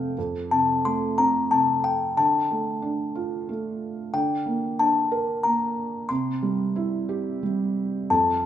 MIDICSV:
0, 0, Header, 1, 3, 480
1, 0, Start_track
1, 0, Key_signature, -1, "major"
1, 0, Tempo, 667408
1, 124, Time_signature, 3, 2, 24, 8
1, 1562, Tempo, 655022
1, 4922, Tempo, 672646
1, 6135, End_track
2, 0, Start_track
2, 0, Title_t, "Music box"
2, 0, Program_c, 0, 10
2, 370, Note_on_c, 0, 81, 77
2, 592, Note_off_c, 0, 81, 0
2, 613, Note_on_c, 0, 84, 79
2, 849, Note_on_c, 0, 82, 84
2, 858, Note_off_c, 0, 84, 0
2, 1086, Note_on_c, 0, 81, 84
2, 1095, Note_off_c, 0, 82, 0
2, 1324, Note_on_c, 0, 79, 80
2, 1332, Note_off_c, 0, 81, 0
2, 1564, Note_on_c, 0, 81, 79
2, 1569, Note_off_c, 0, 79, 0
2, 2731, Note_off_c, 0, 81, 0
2, 3002, Note_on_c, 0, 79, 74
2, 3484, Note_on_c, 0, 81, 75
2, 3494, Note_off_c, 0, 79, 0
2, 3932, Note_off_c, 0, 81, 0
2, 3953, Note_on_c, 0, 82, 77
2, 4432, Note_on_c, 0, 84, 90
2, 4452, Note_off_c, 0, 82, 0
2, 5368, Note_off_c, 0, 84, 0
2, 5882, Note_on_c, 0, 81, 70
2, 6135, Note_off_c, 0, 81, 0
2, 6135, End_track
3, 0, Start_track
3, 0, Title_t, "Felt piano"
3, 0, Program_c, 1, 0
3, 0, Control_c, 1, 64, 127
3, 0, Note_on_c, 1, 41, 55
3, 0, Note_on_c, 1, 48, 43
3, 0, Note_on_c, 1, 57, 51
3, 0, Note_on_c, 1, 60, 45
3, 0, Note_on_c, 1, 77, 56
3, 0, Note_on_c, 1, 79, 53
3, 95, Note_off_c, 1, 41, 0
3, 96, Note_off_c, 1, 57, 0
3, 103, Note_off_c, 1, 79, 0
3, 111, Note_off_c, 1, 60, 0
3, 120, Note_off_c, 1, 48, 0
3, 130, Note_on_c, 1, 41, 52
3, 134, Control_c, 1, 64, 0
3, 140, Note_off_c, 1, 77, 0
3, 241, Control_c, 1, 64, 127
3, 371, Note_on_c, 1, 48, 45
3, 610, Note_on_c, 1, 57, 52
3, 852, Note_on_c, 1, 60, 55
3, 1078, Note_off_c, 1, 48, 0
3, 1089, Note_on_c, 1, 48, 44
3, 1535, Note_off_c, 1, 57, 0
3, 1537, Note_off_c, 1, 41, 0
3, 1543, Note_off_c, 1, 60, 0
3, 1549, Note_off_c, 1, 48, 0
3, 1559, Note_on_c, 1, 50, 58
3, 1571, Control_c, 1, 64, 0
3, 1711, Control_c, 1, 64, 127
3, 1805, Note_on_c, 1, 57, 44
3, 2038, Note_on_c, 1, 62, 52
3, 2281, Note_on_c, 1, 65, 53
3, 2515, Note_off_c, 1, 57, 0
3, 2526, Note_on_c, 1, 57, 46
3, 2967, Note_off_c, 1, 50, 0
3, 2967, Note_off_c, 1, 62, 0
3, 2977, Note_off_c, 1, 65, 0
3, 2987, Note_off_c, 1, 57, 0
3, 2999, Note_on_c, 1, 50, 61
3, 3008, Control_c, 1, 64, 0
3, 3140, Control_c, 1, 64, 127
3, 3237, Note_on_c, 1, 58, 47
3, 3483, Note_on_c, 1, 62, 52
3, 3720, Note_on_c, 1, 70, 54
3, 3950, Note_off_c, 1, 58, 0
3, 3961, Note_on_c, 1, 58, 45
3, 4412, Note_off_c, 1, 50, 0
3, 4414, Note_off_c, 1, 62, 0
3, 4420, Note_off_c, 1, 70, 0
3, 4427, Note_off_c, 1, 58, 0
3, 4440, Note_on_c, 1, 48, 57
3, 4451, Control_c, 1, 64, 0
3, 4580, Control_c, 1, 64, 127
3, 4679, Note_on_c, 1, 55, 49
3, 4922, Note_on_c, 1, 64, 52
3, 5159, Note_on_c, 1, 67, 51
3, 5390, Note_off_c, 1, 55, 0
3, 5401, Note_on_c, 1, 55, 49
3, 5855, Note_off_c, 1, 64, 0
3, 5856, Note_off_c, 1, 48, 0
3, 5862, Note_off_c, 1, 67, 0
3, 5870, Note_off_c, 1, 55, 0
3, 5883, Note_on_c, 1, 41, 56
3, 5893, Control_c, 1, 64, 0
3, 6009, Control_c, 1, 64, 127
3, 6135, Note_off_c, 1, 41, 0
3, 6135, End_track
0, 0, End_of_file